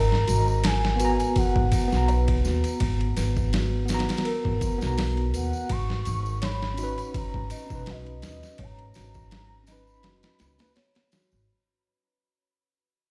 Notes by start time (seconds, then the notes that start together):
Already playing: G#1 A#4 A#5
0.12 snare
0.27 G#1 F#4, ride, tambourine
0.48 tambourine
0.64 G#5, snare, ride, tambourine
0.85 snare
0.96 B3 B4, ride, tambourine
1.00 F#4
1.05 A#5
1.20 ride, tambourine
1.30 G#5
1.35 F#4 F#5, kick, ride, tambourine
1.56 G#1, kick
1.72 F#5, kick, ride, tambourine
1.88 B3
1.92 B1 F#4, snare, tambourine
1.97 A#5
2.07 B4 A#5, ride, tambourine
2.28 kick, ride
2.44 D#2 F#4, snare, tambourine
2.64 ride, tambourine
2.80 G#1, kick, ride, tambourine
3.01 ride
3.17 G#1 B4, snare, ride, tambourine
3.37 kick, tambourine
3.53 F#4, snare, ride, tambourine
3.86 B3, ride, tambourine
3.90 F#4, snare
3.94 A#5
3.99 snare, ride
4.09 snare, ride, tambourine
4.17 snare, ride
4.25 A#4, ride, tambourine
4.45 G#1, kick
4.61 F#4, kick, ride, tambourine
4.78 B1 B3, tambourine
4.82 F#4, snare
4.87 A#5
4.98 snare, open hi-hat, tambourine
5.17 ride
5.34 D#2 B4 F#5, ride, tambourine
5.53 tambourine
5.69 G#1 F#4 C#6, kick, ride, tambourine
5.90 snare
6.05 G#1, ride, tambourine
6.26 tambourine
6.42 C#5 B5, snare, ride, tambourine
6.63 snare
6.74 C#4, ride, tambourine
6.78 D#4 F#4
6.83 B4
6.98 ride, tambourine
7.14 A#5, kick, ride, tambourine
7.34 G#1, kick
7.50 D#5, ride, tambourine
7.54 A#5
7.67 C#4, kick, tambourine
7.71 B1 D#4
7.75 B4
7.86 F#4 D#5, snare, ride, tambourine
8.06 ride
8.22 D#2, snare, ride, tambourine
8.27 D#5
8.43 snare, tambourine
8.58 G#1 C#5, kick, ride, tambourine
8.63 A#5
8.79 ride
8.94 G#1 F#4, snare, ride, tambourine
9.14 kick, tambourine
9.31 snare, ride, tambourine
9.64 C#4, ride, tambourine
9.68 D#4 D#5 B5, snare
9.72 B4
9.87 tambourine
10.03 F#1 F#4, snare, ride, tambourine
10.23 snare, ride
10.39 C#2, snare, ride, tambourine
10.58 C#4 D#4, snare, ride, tambourine
10.62 B4
10.76 C#5, snare, ride, tambourine
10.95 snare, ride
11.12 F#4, snare, ride, tambourine
11.32 G#1, tambourine